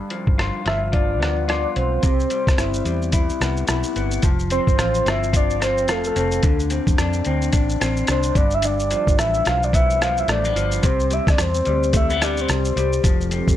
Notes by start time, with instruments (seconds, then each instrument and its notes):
Already playing: clean electric guitar G2 D3 D4
0.10 clean electric guitar F3, closed hi-hat
0.27 fingered electric bass G1, kick
0.38 clean electric guitar F4, cross-stick, closed hi-hat
0.66 fingered electric bass G1, clean electric guitar F3, soft synth lead E5, cross-stick, closed hi-hat
0.92 clean electric guitar F4, soft synth lead D5, kick, closed hi-hat
1.20 fingered electric bass D2, clean electric guitar B3, cross-stick, closed hi-hat
1.48 clean electric guitar F4, soft synth lead D5, cross-stick, closed hi-hat
1.76 fingered electric bass B1, soft synth lead C5, closed hi-hat
2.03 fingered electric bass C2, clean electric guitar C3, kick, closed hi-hat, shaker
2.20 shaker
2.30 clean electric guitar G3, closed hi-hat, shaker
2.47 fingered electric bass C2, kick, cross-stick, shaker
2.58 fingered electric bass G1, clean electric guitar E4, cross-stick, closed hi-hat, shaker
2.74 shaker
2.85 fingered electric bass E2, clean electric guitar G3, closed hi-hat, shaker
3.02 shaker
3.12 clean electric guitar E4, kick, closed hi-hat, shaker
3.29 shaker
3.41 fingered electric bass C2, clean electric guitar B3, cross-stick, closed hi-hat, shaker
3.57 shaker
3.67 fingered electric bass B1, clean electric guitar E4, cross-stick, closed hi-hat, shaker
3.83 shaker
3.96 fingered electric bass G1, clean electric guitar B3, closed hi-hat, shaker
4.11 shaker
4.22 fingered electric bass F1, clean electric guitar F3, kick, closed hi-hat, shaker
4.39 shaker
4.50 clean electric guitar C4, soft synth lead C5, closed hi-hat, shaker
4.67 fingered electric bass G1, kick, shaker
4.78 fingered electric bass A1, clean electric guitar F4, cross-stick, closed hi-hat, shaker
4.94 shaker
5.06 fingered electric bass G1, clean electric guitar C4, soft synth lead E5, cross-stick, closed hi-hat, shaker
5.23 shaker
5.33 clean electric guitar F4, soft synth lead D5, kick, closed hi-hat, shaker
5.50 shaker
5.61 clean electric guitar C4, soft synth lead C5, cross-stick, closed hi-hat, shaker
5.78 shaker
5.88 fingered electric bass F1, clean electric guitar F4, soft synth lead A4, cross-stick, closed hi-hat, shaker
6.04 soft synth lead A4, shaker
6.16 fingered electric bass F1, clean electric guitar C4, closed hi-hat, shaker
6.31 shaker
6.43 fingered electric bass D2, clean electric guitar D3, kick, closed hi-hat, shaker
6.59 shaker
6.70 clean electric guitar C4, closed hi-hat, shaker
6.87 fingered electric bass E2, kick, shaker
6.98 fingered electric bass F2, clean electric guitar D4, cross-stick, closed hi-hat, shaker
7.13 shaker
7.25 fingered electric bass D2, clean electric guitar C4, closed hi-hat, shaker
7.42 shaker
7.53 fingered electric bass A1, clean electric guitar D4, kick, closed hi-hat, shaker
7.69 shaker
7.80 fingered electric bass A1, clean electric guitar C4, cross-stick, closed hi-hat, shaker
7.97 shaker
8.07 fingered electric bass C2, clean electric guitar D4, soft synth lead C5, cross-stick, closed hi-hat, shaker
8.23 shaker
8.35 fingered electric bass G1, clean electric guitar G2, soft synth lead D5, kick, closed hi-hat, shaker
8.51 soft synth lead E5, shaker
8.62 clean electric guitar G2, soft synth lead D5, closed hi-hat, shaker
8.80 shaker
8.91 clean electric guitar F3, closed hi-hat, shaker
9.07 fingered electric bass G1, kick, shaker
9.18 fingered electric bass A1, clean electric guitar B3, soft synth lead E5, cross-stick, closed hi-hat, shaker
9.34 shaker
9.45 fingered electric bass B1, clean electric guitar F3, soft synth lead F5, cross-stick, closed hi-hat, shaker
9.63 soft synth lead D5, shaker
9.73 clean electric guitar B3, soft synth lead E5, kick, closed hi-hat, shaker
9.90 shaker
10.01 clean electric guitar F3, soft synth lead F5, cross-stick, closed hi-hat, shaker
10.17 soft synth lead E5, shaker
10.28 fingered electric bass A1, clean electric guitar A3, soft synth lead D5, cross-stick, closed hi-hat, shaker
10.44 clean electric guitar B3, shaker
10.55 fingered electric bass G1, clean electric guitar F3, closed hi-hat, shaker
10.71 shaker
10.83 fingered electric bass C2, clean electric guitar C3, soft synth lead C5, kick, closed hi-hat, shaker
11.00 shaker
11.11 clean electric guitar G3, soft synth lead E5, closed hi-hat, shaker
11.27 fingered electric bass D2, soft synth lead D5, kick, cross-stick, shaker
11.38 fingered electric bass E2, soft synth lead C5, cross-stick, closed hi-hat, shaker
11.54 shaker
11.65 fingered electric bass D2, clean electric guitar G3, closed hi-hat, shaker
11.83 shaker
11.93 clean electric guitar A3, soft synth lead E5, kick, closed hi-hat, shaker
12.10 clean electric guitar B3, shaker
12.21 clean electric guitar G3, soft synth lead D5, cross-stick, closed hi-hat, shaker
12.37 soft synth lead C5, shaker
12.49 fingered electric bass C2, cross-stick, closed hi-hat, shaker
12.65 shaker
12.76 fingered electric bass C2, clean electric guitar G3, closed hi-hat, shaker
12.93 shaker
13.03 fingered electric bass F1, ambient pad F3 C4 G4 A4, clean electric guitar F3, kick, closed hi-hat, shaker
13.21 shaker
13.31 clean electric guitar C4, closed hi-hat, shaker
13.47 fingered electric bass G1, kick, shaker